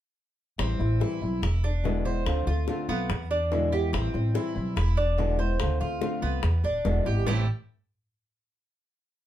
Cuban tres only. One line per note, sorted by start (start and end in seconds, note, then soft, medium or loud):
0.59 1.00 C4 medium
1.01 1.42 E4 medium
1.43 1.63 E4 medium
1.64 2.04 D4 medium
2.05 2.46 C5 medium
2.47 2.88 F4 medium
2.89 3.29 B3 medium
3.31 3.71 D4 medium
3.72 3.93 G4 medium
3.93 4.34 C4 medium
4.35 4.75 E4 medium
4.77 4.97 E4 medium
4.97 5.38 D4 medium
5.39 5.79 C5 medium
5.81 6.21 F4 medium
6.22 6.63 B3 medium
6.64 7.05 D4 medium
7.06 7.26 G4 medium
7.27 7.46 A3 medium
7.27 7.46 E4 medium
7.27 7.47 G4 medium